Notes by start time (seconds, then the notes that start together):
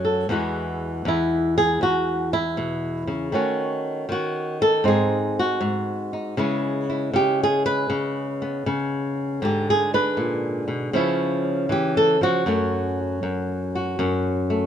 Already playing: F#2 F#3 A3 D#4
0.05 A4
0.29 E2 E3 G#3 B3 F#4
1.05 E2 E4
1.58 G#4
1.81 E2 F#4
2.33 E4
2.57 B2
3.07 C#3
3.32 D#3 A3 C#4 F#4
4.09 D#3 F#4
4.62 A4
4.84 G#2 C4 D#4 G#4
5.39 F#4
5.61 G#2
6.13 D#4
6.37 C#3 G#3 B3 E4
6.90 E4
7.13 C#3 G4
7.43 G#4
7.66 B4
7.90 C#3
8.42 B3
8.66 C#3
9.42 G#2 D3 D4 G4
9.70 G#4
9.94 D4 B4
10.17 A#2
10.68 B2
10.93 C#3 F3 B3 C#4 E4
11.69 E3 G4
11.97 A4
12.21 F3 F#4
12.46 F#2 F#3 A3 C#4
13.23 F#2
13.75 F#4
13.99 F#2 C#4
14.50 A3